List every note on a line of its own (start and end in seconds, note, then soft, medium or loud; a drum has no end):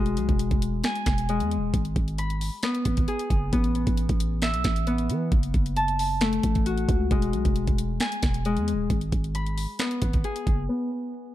0.00 0.18 E1 loud
0.00 1.28 G#3 medium
0.00 0.81 B3 medium
0.00 1.93 F#4 medium
0.06 closed hi-hat medium
0.17 0.28 B1 loud
0.17 closed hi-hat medium
0.29 0.50 E1 loud
0.29 kick loud
0.29 closed hi-hat medium
0.39 closed hi-hat medium
0.51 0.83 E1 loud
0.51 kick medium
0.51 closed hi-hat medium
0.62 closed hi-hat medium
0.84 2.34 G#5 medium
0.84 finger snap loud
0.84 snare loud
0.84 closed hi-hat medium
0.95 closed hi-hat medium
1.06 1.42 E1 loud
1.06 finger snap medium
1.06 kick loud
1.06 snare medium
1.06 closed hi-hat medium
1.18 closed hi-hat medium
1.29 1.79 G#3 medium
1.29 closed hi-hat medium
1.40 1.59 E2 medium
1.40 closed hi-hat medium
1.51 closed hi-hat medium
1.57 1.73 E1 loud
1.74 1.95 G#1 loud
1.74 kick loud
1.74 closed hi-hat medium
1.85 closed hi-hat medium
1.96 2.50 G#1 loud
1.96 kick loud
1.96 closed hi-hat medium
2.08 closed hi-hat medium
2.18 3.54 B5 medium
2.18 closed hi-hat medium
2.30 closed hi-hat medium
2.41 open hi-hat medium
2.63 3.52 B3 loud
2.63 finger snap medium
2.63 snare loud
2.63 closed hi-hat medium
2.75 closed hi-hat medium
2.85 3.07 G#1 loud
2.85 kick loud
2.85 closed hi-hat medium
2.97 kick loud
2.97 closed hi-hat medium
3.08 5.35 G#4 medium
3.08 closed hi-hat medium
3.19 closed hi-hat medium
3.30 3.52 F#1 loud
3.30 kick medium
3.30 closed hi-hat medium
3.53 3.86 A1 loud
3.53 4.87 B3 medium
3.53 kick loud
3.53 closed hi-hat medium
3.64 closed hi-hat medium
3.75 closed hi-hat medium
3.87 4.08 A1 loud
3.87 kick medium
3.87 closed hi-hat medium
3.97 closed hi-hat medium
4.09 4.56 A1 loud
4.09 kick medium
4.09 closed hi-hat medium
4.20 closed hi-hat medium
4.42 6.15 E5 medium
4.42 finger snap medium
4.42 snare loud
4.42 closed hi-hat medium
4.54 4.64 B1 loud
4.54 closed hi-hat medium
4.64 5.11 A1 loud
4.64 finger snap medium
4.64 kick loud
4.64 snare loud
4.64 closed hi-hat medium
4.76 closed hi-hat medium
4.87 7.98 B3 medium
4.87 closed hi-hat medium
4.98 closed hi-hat medium
5.09 5.31 E3 loud
5.09 closed hi-hat medium
5.32 5.53 F#1 loud
5.32 kick loud
5.32 closed hi-hat medium
5.43 closed hi-hat medium
5.54 6.40 F#1 loud
5.54 kick loud
5.54 closed hi-hat medium
5.66 closed hi-hat medium
5.76 7.17 A5 medium
5.76 closed hi-hat medium
5.88 closed hi-hat medium
5.99 open hi-hat medium
6.21 7.17 A3 loud
6.21 finger snap medium
6.21 snare loud
6.21 closed hi-hat medium
6.33 closed hi-hat medium
6.43 6.87 A1 loud
6.43 kick loud
6.43 closed hi-hat medium
6.55 kick loud
6.55 closed hi-hat medium
6.66 9.10 F#4 medium
6.66 closed hi-hat medium
6.78 closed hi-hat medium
6.89 7.10 C#2 loud
6.89 kick medium
6.89 closed hi-hat medium
7.11 7.35 E1 loud
7.11 8.44 G#3 medium
7.11 kick loud
7.11 closed hi-hat medium
7.22 closed hi-hat medium
7.33 7.45 B1 loud
7.33 closed hi-hat medium
7.45 7.67 E1 loud
7.45 kick loud
7.45 closed hi-hat medium
7.56 closed hi-hat medium
7.67 7.99 E1 loud
7.67 kick medium
7.67 closed hi-hat medium
7.78 closed hi-hat medium
8.00 9.50 G#5 medium
8.00 finger snap medium
8.00 snare loud
8.00 closed hi-hat medium
8.12 closed hi-hat medium
8.23 8.59 E1 loud
8.23 finger snap medium
8.23 kick loud
8.23 snare loud
8.23 closed hi-hat medium
8.34 closed hi-hat medium
8.45 8.95 G#3 loud
8.45 closed hi-hat medium
8.57 8.75 E2 loud
8.57 closed hi-hat medium
8.68 closed hi-hat medium
8.74 8.89 E1 loud
8.90 9.12 G#1 loud
8.90 kick loud
8.90 closed hi-hat medium
9.01 closed hi-hat medium
9.12 9.67 G#1 loud
9.12 kick loud
9.12 closed hi-hat medium
9.24 closed hi-hat medium
9.35 10.70 B5 medium
9.35 closed hi-hat medium
9.47 closed hi-hat medium
9.58 open hi-hat medium
9.79 10.69 B3 medium
9.79 finger snap medium
9.79 snare loud
9.79 closed hi-hat medium
9.91 closed hi-hat medium
10.02 10.23 G#1 loud
10.02 kick loud
10.02 closed hi-hat medium
10.13 kick loud
10.13 closed hi-hat medium
10.24 11.35 G#4 medium
10.24 closed hi-hat medium
10.36 closed hi-hat medium
10.47 10.68 F#1 loud
10.47 kick medium
10.47 closed hi-hat medium
10.69 11.35 B3 medium
10.69 closed hi-hat medium
10.80 closed hi-hat medium
10.92 closed hi-hat medium
11.03 closed hi-hat soft
11.14 closed hi-hat medium
11.26 closed hi-hat medium